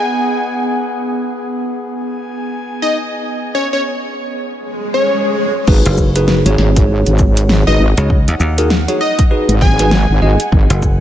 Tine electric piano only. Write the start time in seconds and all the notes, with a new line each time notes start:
5.68 D#4 F#4 G#4 B4
6.16 D#4 F#4 G#4 B4
6.46 D#4 F#4 G#4 C#5
7.67 D#4 F#4 G#4 B4
7.98 D#4 F#4 G#4 C#5
8.58 D#4 F#4 G#4 A#4
8.88 D#4 F#4 G#4 C#5
9.31 D#4 F#4 G#4 B4
9.79 D#4 F#4 G#4 B4
10.22 D#4 F#4 G#4 D#5